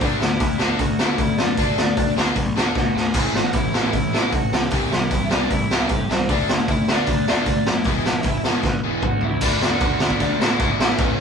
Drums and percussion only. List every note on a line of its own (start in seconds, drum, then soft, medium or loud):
0.01 kick loud
0.01 open hi-hat medium
0.22 snare loud
0.40 kick loud
0.40 open hi-hat medium
0.59 snare loud
0.79 kick loud
0.79 open hi-hat soft
0.99 snare loud
1.18 kick loud
1.18 open hi-hat medium
1.38 snare loud
1.57 kick loud
1.57 open hi-hat medium
1.78 snare loud
1.97 kick loud
1.97 open hi-hat medium
2.18 snare loud
2.35 kick loud
2.35 open hi-hat medium
2.57 snare loud
2.75 kick loud
2.75 snare medium
2.97 snare medium
3.14 kick loud
3.14 open hi-hat medium
3.14 crash medium
3.35 snare loud
3.53 kick loud
3.53 open hi-hat medium
3.74 snare loud
3.93 kick loud
3.93 open hi-hat medium
4.14 snare loud
4.32 kick loud
4.32 open hi-hat medium
4.53 snare loud
4.71 kick loud
4.71 open hi-hat medium
4.92 snare loud
5.11 kick loud
5.11 open hi-hat medium
5.31 snare loud
5.50 kick loud
5.50 open hi-hat medium
5.71 snare loud
5.89 kick loud
5.89 open hi-hat medium
6.11 snare loud
6.29 kick loud
6.29 open hi-hat medium
6.49 snare loud
6.68 kick loud
6.68 open hi-hat medium
6.88 snare loud
7.06 kick loud
7.06 open hi-hat medium
7.28 snare loud
7.46 kick loud
7.46 open hi-hat medium
7.67 snare loud
7.84 kick loud
7.84 open hi-hat medium
8.05 snare loud
8.23 kick loud
8.23 open hi-hat medium
8.44 snare loud
8.63 kick loud
8.63 snare medium
9.02 kick loud
9.02 mid tom medium
9.21 floor tom medium
9.41 kick loud
9.41 crash loud
9.41 crash medium
9.62 snare loud
9.80 kick loud
9.80 crash medium
10.00 snare loud
10.10 kick medium
10.20 kick medium
10.20 crash medium
10.41 snare loud
10.60 kick loud
10.60 crash medium
10.80 snare loud
10.98 kick loud
10.98 crash medium